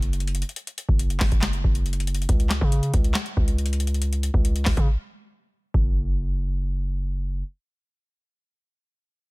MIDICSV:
0, 0, Header, 1, 3, 480
1, 0, Start_track
1, 0, Tempo, 431655
1, 626, Time_signature, 4, 2, 24, 8
1, 10342, End_track
2, 0, Start_track
2, 0, Title_t, "808-style bass"
2, 0, Program_c, 0, 38
2, 0, Note_on_c, 0, 30, 105
2, 482, Note_off_c, 0, 30, 0
2, 985, Note_on_c, 0, 30, 104
2, 1332, Note_off_c, 0, 30, 0
2, 1346, Note_on_c, 0, 30, 109
2, 1458, Note_off_c, 0, 30, 0
2, 1465, Note_on_c, 0, 30, 104
2, 1811, Note_off_c, 0, 30, 0
2, 1826, Note_on_c, 0, 30, 109
2, 2518, Note_off_c, 0, 30, 0
2, 2546, Note_on_c, 0, 37, 108
2, 2892, Note_off_c, 0, 37, 0
2, 2905, Note_on_c, 0, 49, 105
2, 3251, Note_off_c, 0, 49, 0
2, 3266, Note_on_c, 0, 37, 107
2, 3496, Note_off_c, 0, 37, 0
2, 3746, Note_on_c, 0, 37, 105
2, 4783, Note_off_c, 0, 37, 0
2, 4826, Note_on_c, 0, 37, 99
2, 5172, Note_off_c, 0, 37, 0
2, 5186, Note_on_c, 0, 37, 110
2, 5299, Note_off_c, 0, 37, 0
2, 5306, Note_on_c, 0, 49, 110
2, 5426, Note_off_c, 0, 49, 0
2, 6386, Note_on_c, 0, 30, 105
2, 8262, Note_off_c, 0, 30, 0
2, 10342, End_track
3, 0, Start_track
3, 0, Title_t, "Drums"
3, 28, Note_on_c, 9, 42, 62
3, 139, Note_off_c, 9, 42, 0
3, 146, Note_on_c, 9, 42, 55
3, 226, Note_off_c, 9, 42, 0
3, 226, Note_on_c, 9, 42, 56
3, 306, Note_off_c, 9, 42, 0
3, 306, Note_on_c, 9, 42, 54
3, 386, Note_off_c, 9, 42, 0
3, 386, Note_on_c, 9, 42, 76
3, 466, Note_off_c, 9, 42, 0
3, 466, Note_on_c, 9, 42, 61
3, 546, Note_off_c, 9, 42, 0
3, 546, Note_on_c, 9, 42, 44
3, 626, Note_off_c, 9, 42, 0
3, 626, Note_on_c, 9, 42, 83
3, 737, Note_off_c, 9, 42, 0
3, 748, Note_on_c, 9, 42, 64
3, 859, Note_off_c, 9, 42, 0
3, 866, Note_on_c, 9, 42, 86
3, 977, Note_off_c, 9, 42, 0
3, 985, Note_on_c, 9, 36, 96
3, 1097, Note_off_c, 9, 36, 0
3, 1105, Note_on_c, 9, 42, 81
3, 1217, Note_off_c, 9, 42, 0
3, 1226, Note_on_c, 9, 42, 57
3, 1337, Note_off_c, 9, 42, 0
3, 1337, Note_on_c, 9, 39, 76
3, 1345, Note_on_c, 9, 38, 92
3, 1345, Note_on_c, 9, 46, 82
3, 1346, Note_on_c, 9, 36, 108
3, 1448, Note_off_c, 9, 39, 0
3, 1456, Note_off_c, 9, 46, 0
3, 1457, Note_off_c, 9, 36, 0
3, 1457, Note_off_c, 9, 38, 0
3, 1465, Note_on_c, 9, 36, 104
3, 1466, Note_on_c, 9, 42, 58
3, 1576, Note_off_c, 9, 36, 0
3, 1577, Note_off_c, 9, 42, 0
3, 1577, Note_on_c, 9, 39, 102
3, 1586, Note_on_c, 9, 38, 127
3, 1586, Note_on_c, 9, 42, 85
3, 1688, Note_off_c, 9, 39, 0
3, 1697, Note_off_c, 9, 38, 0
3, 1697, Note_off_c, 9, 42, 0
3, 1703, Note_on_c, 9, 42, 48
3, 1814, Note_off_c, 9, 42, 0
3, 1826, Note_on_c, 9, 36, 97
3, 1938, Note_off_c, 9, 36, 0
3, 1947, Note_on_c, 9, 42, 61
3, 2058, Note_off_c, 9, 42, 0
3, 2066, Note_on_c, 9, 42, 57
3, 2146, Note_off_c, 9, 42, 0
3, 2146, Note_on_c, 9, 42, 56
3, 2225, Note_off_c, 9, 42, 0
3, 2225, Note_on_c, 9, 42, 56
3, 2305, Note_off_c, 9, 42, 0
3, 2305, Note_on_c, 9, 42, 78
3, 2386, Note_off_c, 9, 42, 0
3, 2386, Note_on_c, 9, 42, 59
3, 2466, Note_off_c, 9, 42, 0
3, 2466, Note_on_c, 9, 42, 43
3, 2546, Note_off_c, 9, 42, 0
3, 2546, Note_on_c, 9, 36, 123
3, 2546, Note_on_c, 9, 42, 82
3, 2657, Note_off_c, 9, 36, 0
3, 2657, Note_off_c, 9, 42, 0
3, 2667, Note_on_c, 9, 42, 63
3, 2778, Note_on_c, 9, 39, 73
3, 2779, Note_off_c, 9, 42, 0
3, 2786, Note_on_c, 9, 38, 90
3, 2786, Note_on_c, 9, 42, 85
3, 2889, Note_off_c, 9, 39, 0
3, 2897, Note_off_c, 9, 38, 0
3, 2897, Note_off_c, 9, 42, 0
3, 2905, Note_on_c, 9, 36, 100
3, 3017, Note_off_c, 9, 36, 0
3, 3026, Note_on_c, 9, 42, 80
3, 3137, Note_off_c, 9, 42, 0
3, 3146, Note_on_c, 9, 42, 60
3, 3257, Note_off_c, 9, 42, 0
3, 3265, Note_on_c, 9, 42, 82
3, 3266, Note_on_c, 9, 36, 108
3, 3376, Note_off_c, 9, 42, 0
3, 3377, Note_off_c, 9, 36, 0
3, 3385, Note_on_c, 9, 42, 58
3, 3497, Note_off_c, 9, 42, 0
3, 3497, Note_on_c, 9, 39, 103
3, 3505, Note_on_c, 9, 38, 125
3, 3506, Note_on_c, 9, 42, 86
3, 3608, Note_off_c, 9, 39, 0
3, 3617, Note_off_c, 9, 38, 0
3, 3617, Note_off_c, 9, 42, 0
3, 3624, Note_on_c, 9, 42, 47
3, 3735, Note_off_c, 9, 42, 0
3, 3746, Note_on_c, 9, 36, 98
3, 3858, Note_off_c, 9, 36, 0
3, 3868, Note_on_c, 9, 42, 64
3, 3979, Note_off_c, 9, 42, 0
3, 3986, Note_on_c, 9, 42, 56
3, 4066, Note_off_c, 9, 42, 0
3, 4066, Note_on_c, 9, 42, 58
3, 4146, Note_off_c, 9, 42, 0
3, 4146, Note_on_c, 9, 42, 57
3, 4226, Note_off_c, 9, 42, 0
3, 4226, Note_on_c, 9, 42, 78
3, 4306, Note_off_c, 9, 42, 0
3, 4306, Note_on_c, 9, 42, 59
3, 4386, Note_off_c, 9, 42, 0
3, 4386, Note_on_c, 9, 42, 43
3, 4466, Note_off_c, 9, 42, 0
3, 4466, Note_on_c, 9, 42, 80
3, 4577, Note_off_c, 9, 42, 0
3, 4588, Note_on_c, 9, 42, 65
3, 4699, Note_off_c, 9, 42, 0
3, 4706, Note_on_c, 9, 42, 83
3, 4818, Note_off_c, 9, 42, 0
3, 4826, Note_on_c, 9, 36, 98
3, 4937, Note_off_c, 9, 36, 0
3, 4946, Note_on_c, 9, 42, 83
3, 5057, Note_off_c, 9, 42, 0
3, 5066, Note_on_c, 9, 42, 58
3, 5178, Note_off_c, 9, 42, 0
3, 5178, Note_on_c, 9, 39, 72
3, 5185, Note_on_c, 9, 46, 79
3, 5186, Note_on_c, 9, 36, 103
3, 5186, Note_on_c, 9, 38, 91
3, 5289, Note_off_c, 9, 39, 0
3, 5297, Note_off_c, 9, 36, 0
3, 5297, Note_off_c, 9, 38, 0
3, 5297, Note_off_c, 9, 46, 0
3, 5305, Note_on_c, 9, 36, 105
3, 5306, Note_on_c, 9, 42, 59
3, 5417, Note_off_c, 9, 36, 0
3, 5417, Note_off_c, 9, 42, 0
3, 6386, Note_on_c, 9, 36, 107
3, 6498, Note_off_c, 9, 36, 0
3, 10342, End_track
0, 0, End_of_file